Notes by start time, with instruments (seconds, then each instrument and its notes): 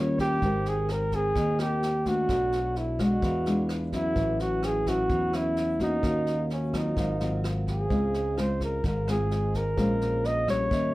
Already playing: fingered electric bass D#2, nylon-string guitar D#3 G3 C#4 F4, tine electric piano C#4 F4 G4 A#4
0.00 flugelhorn C#5
0.19 flugelhorn G4, kick, snare
0.39 fingered electric bass G#1, nylon-string guitar G#3 C4 G4, tine electric piano D#4 A#4 G5, kick, snare
0.43 nylon-string guitar A#4, tine electric piano C5
0.65 flugelhorn G#4, snare
0.89 flugelhorn A#4, cross-stick, snare
1.12 nylon-string guitar C4 A#4, flugelhorn G#4, kick, snare
1.35 fingered electric bass D#2, nylon-string guitar D#3, kick, snare
1.59 nylon-string guitar C4 G4 A#4, flugelhorn G4, cross-stick, snare
1.83 snare
2.06 nylon-string guitar A3 D4 F#4, flugelhorn F#4, kick, snare
2.26 fingered electric bass B1, tine electric piano F#4 A4, kick, cross-stick, snare
2.30 nylon-string guitar B2, tine electric piano C#5 D5
2.52 snare
2.76 flugelhorn E4, snare
2.99 nylon-string guitar G#3 D4, flugelhorn F#4, kick, cross-stick, snare
3.20 fingered electric bass E2, nylon-string guitar E3, tine electric piano G#4 B4, kick, snare
3.24 tine electric piano D5 F5
3.46 nylon-string guitar G#3 D4 F4, snare
3.69 cross-stick, snare
3.92 nylon-string guitar F#3 C#4 E4, flugelhorn E4, kick, snare
4.13 fingered electric bass A1, nylon-string guitar A2, tine electric piano F#4 B4 C#5, kick, snare
4.19 tine electric piano E5
4.39 flugelhorn F#4, snare
4.63 flugelhorn G#4, cross-stick, snare
4.86 nylon-string guitar F#3 C#4 E4, flugelhorn F#4, kick, snare
5.09 fingered electric bass E2, nylon-string guitar E3, kick, snare
5.33 nylon-string guitar F#3 C#4 E4, flugelhorn E4, cross-stick, snare
5.57 snare
5.79 nylon-string guitar A#3 C#4 F#4, flugelhorn D#4, kick, snare
6.00 fingered electric bass D#2, nylon-string guitar D#3, tine electric piano F#4 A#4, kick, cross-stick, snare
6.04 tine electric piano C#5 F5
6.27 snare
6.50 flugelhorn C#4, snare
6.73 nylon-string guitar F#3 C4 F4, flugelhorn D#4, kick, cross-stick, snare
6.96 fingered electric bass G#1, nylon-string guitar G#2, tine electric piano A#4 C5, kick, snare
7.00 tine electric piano F5
7.20 nylon-string guitar F#3 C4 F4, snare
7.44 cross-stick, snare
7.67 flugelhorn G#4, kick, snare
7.87 fingered electric bass C#2, nylon-string guitar C#3 G#3 C4, tine electric piano G#4 C5, kick, snare
7.91 nylon-string guitar F4, tine electric piano D#5 F5
8.14 snare
8.37 nylon-string guitar G#3 C4 F4, flugelhorn C5, cross-stick, snare
8.61 flugelhorn A#4, kick, snare
8.84 fingered electric bass G#1, nylon-string guitar G#2, flugelhorn A#4, kick, snare
9.07 nylon-string guitar G#3 C4 F4, flugelhorn G#4, cross-stick, snare
9.30 tine electric piano G#4 C5 D#5 G#5, snare
9.54 flugelhorn A#4, kick, snare
9.75 fingered electric bass A#1, nylon-string guitar A#2 G#3 C#4 F4, tine electric piano G#4 C5, kick, cross-stick, snare
9.79 tine electric piano C#5 F5
10.01 snare
10.24 flugelhorn D#5, snare
10.47 nylon-string guitar G3 C#4, flugelhorn C#5, kick, cross-stick, snare
10.68 fingered electric bass D#2, nylon-string guitar D#3, tine electric piano G4 A#4, kick, snare
10.72 tine electric piano C#4 E5